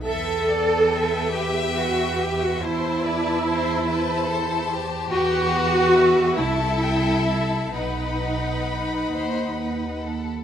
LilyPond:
<<
  \new Staff \with { instrumentName = "Violin section" } { \time 6/8 \key e \minor \tempo 4. = 46 << { g''2. | a''4. a''4. | g''8 fis''8 e''8 a''8 g''8 a''8 | b''2~ b''8. r16 | } \\ { b'2. | c''8 d''8 c''2 | b'4. e''4. | fis''2~ fis''8. r16 | } >> }
  \new Staff \with { instrumentName = "Violin section" } { \time 6/8 \key e \minor e''8 d''8 e''2 | c''8 b'8 c''8 b'8 a'8 g'8~ | g'4. a'4. | b'4. c''8 b'8 a'8 | }
  \new Staff \with { instrumentName = "Cello section" } { \time 6/8 \key e \minor a'4. g'8 fis'8 g'16 fis'16 | e'2~ e'8 r8 | fis'4. e'4. | dis'2~ dis'8 r8 | }
  \new Staff \with { instrumentName = "Viola section" } { \time 6/8 \key e \minor a'4. g'8 fis'8 g'16 fis'16 | e'2~ e'8 r8 | fis'4. e'4. | dis'2~ dis'8 r8 | }
  \new Staff \with { instrumentName = "Double bass section" } { \clef bass \time 6/8 \key e \minor e,2. | e,2. | e,4. c,4. | b,,4. dis,4~ dis,16 r16 | }
>>